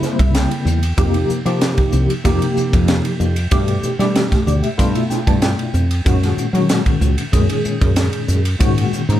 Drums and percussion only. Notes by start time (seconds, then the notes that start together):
0.03 snare, hi-hat pedal
0.19 kick, ride
0.35 snare, hi-hat pedal, ride
0.51 ride
0.67 hi-hat pedal
0.83 ride
0.98 kick, hi-hat pedal, ride
1.14 ride
1.30 hi-hat pedal
1.46 ride
1.61 snare, hi-hat pedal, ride
1.78 kick, ride
1.92 hi-hat pedal
2.10 ride
2.25 kick, hi-hat pedal, ride
2.42 ride
2.57 hi-hat pedal
2.73 kick, ride
2.88 snare, hi-hat pedal, ride
3.05 ride
3.20 hi-hat pedal
3.36 ride
3.51 kick, hi-hat pedal, ride
3.68 ride
3.83 hi-hat pedal
4.00 snare, ride
4.16 snare, hi-hat pedal, ride
4.32 kick, snare, ride
4.47 hi-hat pedal
4.63 ride
4.79 kick, hi-hat pedal, ride
4.95 ride
5.10 snare, hi-hat pedal
5.27 kick, ride
5.42 snare, hi-hat pedal, ride
5.59 ride
5.74 hi-hat pedal
5.91 ride
6.06 kick, hi-hat pedal, ride
6.23 snare, ride
6.38 hi-hat pedal
6.55 ride
6.69 snare, hi-hat pedal, ride
6.86 kick, ride
7.01 hi-hat pedal
7.18 ride
7.33 kick, hi-hat pedal, ride
7.49 ride
7.65 hi-hat pedal
7.81 kick, ride
7.96 snare, hi-hat pedal, ride
8.13 ride
8.28 hi-hat pedal
8.45 ride
8.61 kick, hi-hat pedal, ride
8.78 ride
8.93 hi-hat pedal
9.10 ride